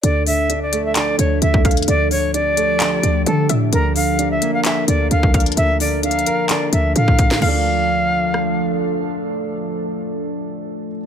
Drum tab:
CC |------------------------------------------------------------------------------------------------|------------------------------------------------------------------------------------------------|------------------------------------------------------------------------------------------------|------------------------------------------------------------------------------------------------|
HH |x-----------o-----------x-----------x-----------x-----------x-----------x-----------x--x--x--x--|x-----------o-----------x-----------x-----------x-----------x-----------x-----------x-----------|x-----------o-----------x-----------x-----------x-----------x-----------x-----------x--x--x--x--|x-----------o-----------x---x---x---x-----------x-----------x-----------x-----------x-----------|
CP |------------------------------------------------x-----------------------------------------------|------------------------------------------------x-----------------------------------------------|------------------------------------------------x-----------------------------------------------|------------------------------------------------x-----------------------------------------------|
SD |------------------------------------------------------------------------------------------------|------------------------------------------------------------------------------------------------|------------------------------------------------------------------------------------------------|------------------------------------------------------------------------------------------o-----|
BD |------------------------------------------------------------------------------o-----o-----------|------------------------------------------------------------------------------------------------|------------------------------------------------------------------------------o-----o-----------|------------------------------------------------------------------------------o-----o-----------|

CC |x-----------------------------------------------------------------------------------------------|------------------------------------------------------------------------------------------------|
HH |------------------------------------------------------------------------------------------------|------------------------------------------------------------------------------------------------|
CP |------------------------------------------------------------------------------------------------|------------------------------------------------------------------------------------------------|
SD |------------------------------------------------r-----------------------------------------------|------------------------------------------------------------------------------------------------|
BD |------------------------------------------------------------------------------------------------|------------------------------------------------------------------------------------------------|